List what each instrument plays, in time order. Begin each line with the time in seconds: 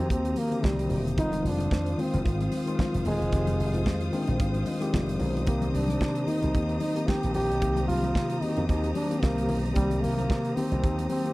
Already playing: tine electric piano D#3 A#3 C4 F#4 G4, string section G4 C5 A#5 D#6
0.00 slap bass F2
0.10 slap bass D#2, trombone C4, kick, closed hi-hat, muted conga
0.25 closed hi-hat
0.36 trombone A#3, open hi-hat, high conga
0.51 tine electric piano D3 A#3 C4 G4, closed hi-hat
0.58 tine electric piano D#3
0.63 slap bass C2, trombone G3, kick, snare, muted conga, high conga
0.77 closed hi-hat, muted conga
0.89 slap bass E1, open hi-hat, low conga
1.07 closed hi-hat
1.16 slap bass F1, tine electric piano D#3 G3 C4 F4, trombone D#4, string section F4 F5, kick, closed hi-hat
1.24 tine electric piano G#3
1.32 closed hi-hat, muted conga, high conga
1.44 slap bass F1, trombone D4, open hi-hat
1.58 closed hi-hat, high conga
1.71 slap bass F2, kick, snare, muted conga
1.86 closed hi-hat, muted conga
1.97 tine electric piano D#3 G#3 C4 F4, trombone C4, open hi-hat, low conga
2.13 slap bass F1, closed hi-hat, low conga
2.25 slap bass G#1, trombone C4, kick, closed hi-hat, muted conga
2.41 closed hi-hat, muted conga
2.52 open hi-hat, high conga
2.66 tine electric piano D#3 G#3 C4 F4, closed hi-hat
2.79 kick, snare, muted conga, high conga
2.93 slap bass F1, closed hi-hat, muted conga
3.05 slap bass D#1, trombone G#3, open hi-hat, low conga
3.21 slap bass E1, closed hi-hat
3.32 slap bass F1, tine electric piano D#3 G#3 C4 G4, kick, closed hi-hat, muted conga
3.47 closed hi-hat, muted conga, high conga
3.60 slap bass F1, open hi-hat
3.74 closed hi-hat, high conga
3.86 slap bass F2, kick, snare, muted conga
4.01 closed hi-hat, muted conga
4.12 tine electric piano D#3 G#3 C4 D4 G5, open hi-hat, low conga
4.27 slap bass A#1, closed hi-hat, low conga
4.39 slap bass G#1, tine electric piano F5, kick, closed hi-hat, muted conga
4.54 closed hi-hat, muted conga
4.65 tine electric piano D#5, open hi-hat, high conga
4.80 tine electric piano D#3 G#3 C4 G4, closed hi-hat
4.93 slap bass F1, tine electric piano D5, kick, snare, high conga
5.06 closed hi-hat, muted conga
5.19 slap bass B1, tine electric piano C5, open hi-hat, low conga
5.37 closed hi-hat
5.46 slap bass C2, tine electric piano D#3 A#3 C4 G4, trombone A#3, string section G4 A#5, kick, closed hi-hat, muted conga
5.61 closed hi-hat, muted conga, high conga
5.74 slap bass C2, trombone D4, open hi-hat
5.88 closed hi-hat, high conga
6.01 slap bass C3, kick, snare
6.15 closed hi-hat
6.27 tine electric piano D#3 A#3 C4 D#4, trombone D#4, open hi-hat, low conga
6.42 slap bass C2, closed hi-hat, low conga
6.55 slap bass D#2, kick, closed hi-hat
6.69 closed hi-hat, muted conga
6.80 trombone D#4, open hi-hat, high conga
6.95 tine electric piano D#3 A#3 C4 G4, closed hi-hat
7.07 trombone G4, kick, snare, muted conga, high conga
7.23 slap bass A#1, closed hi-hat
7.34 slap bass A#1, trombone G4, open hi-hat, low conga
7.51 slap bass B1, closed hi-hat
7.61 slap bass C2, tine electric piano D#3 A#3 C4 G4, kick, closed hi-hat, muted conga
7.76 closed hi-hat, high conga
7.88 slap bass C2, trombone F4, open hi-hat
8.03 closed hi-hat, high conga
8.15 slap bass C3, kick, snare
8.30 closed hi-hat, muted conga
8.41 tine electric piano D#3 A#3 C4 F#4, trombone D#4, open hi-hat, low conga
8.49 tine electric piano G4
8.57 slap bass F2, closed hi-hat, low conga
8.68 slap bass D#2, trombone D#4, kick, closed hi-hat, muted conga
8.83 closed hi-hat, muted conga
8.95 trombone D4, open hi-hat, high conga
9.10 tine electric piano D#3 A#3 C4 G4, closed hi-hat
9.22 slap bass C2, trombone A#3, kick, snare, high conga
9.36 closed hi-hat, muted conga
9.49 slap bass B1, open hi-hat, low conga
9.66 closed hi-hat
9.74 slap bass C2, tine electric piano D#3 A#3 C4 G4, trombone G3, kick, closed hi-hat, muted conga
9.90 closed hi-hat, muted conga, high conga
10.01 slap bass C2, trombone A#3, open hi-hat
10.17 closed hi-hat, high conga
10.30 slap bass C3, kick, snare, muted conga
10.45 closed hi-hat, muted conga
10.55 tine electric piano D#3 A#3 C4 G4, trombone C4, open hi-hat, low conga
10.72 slap bass C2, closed hi-hat, low conga
10.83 slap bass D#2, kick, closed hi-hat, muted conga
10.99 closed hi-hat, muted conga
11.09 trombone C4, open hi-hat, high conga
11.25 tine electric piano D#3 A#3 C4 G4, closed hi-hat